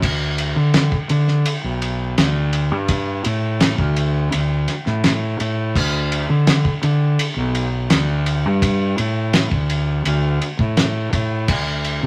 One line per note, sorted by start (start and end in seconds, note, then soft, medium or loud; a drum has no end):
0.02 0.53 D2 medium
0.02 kick loud
0.02 crash medium
0.38 ride medium
0.56 0.89 D3 medium
0.74 snare loud
0.74 ride loud
0.92 kick medium
1.09 1.43 D3 loud
1.09 ride medium
1.28 snare soft
1.46 ride loud
1.64 2.14 B1 medium
1.82 ride medium
2.18 2.72 D2 medium
2.18 snare loud
2.18 ride loud
2.53 ride medium
2.72 3.21 G2 medium
2.88 kick loud
2.88 ride loud
3.24 3.75 A2 medium
3.24 ride medium
3.60 snare loud
3.60 ride loud
3.78 4.29 D2 medium
3.78 kick medium
3.96 ride medium
4.32 4.66 D2 medium
4.32 ride medium
4.68 snare soft
4.68 ride medium
4.86 5.37 A2 medium
4.86 snare soft
5.04 snare loud
5.04 ride medium
5.40 5.76 A2 medium
5.40 ride medium
5.75 6.26 D2 loud
5.75 kick loud
5.75 crash medium
6.12 ride medium
6.30 6.63 D3 medium
6.47 snare loud
6.47 ride loud
6.65 kick medium
6.83 7.16 D3 loud
6.83 ride medium
7.19 ride loud
7.36 7.86 B1 medium
7.55 ride medium
7.90 8.46 D2 loud
7.90 snare loud
7.90 ride loud
8.26 ride medium
8.46 8.95 G2 medium
8.62 kick loud
8.62 ride loud
8.98 9.48 A2 medium
8.98 ride medium
9.33 snare loud
9.33 ride loud
9.51 10.02 D2 medium
9.51 kick medium
9.70 ride medium
10.05 10.38 D2 medium
10.05 ride medium
10.42 ride medium
10.59 11.09 A2 medium
10.59 kick medium
10.77 snare loud
10.77 ride medium
11.13 11.49 A2 medium
11.13 kick medium
11.13 ride medium
11.48 11.99 D2 loud
11.48 kick loud
11.48 crash medium
11.85 ride medium
12.03 12.06 C3 medium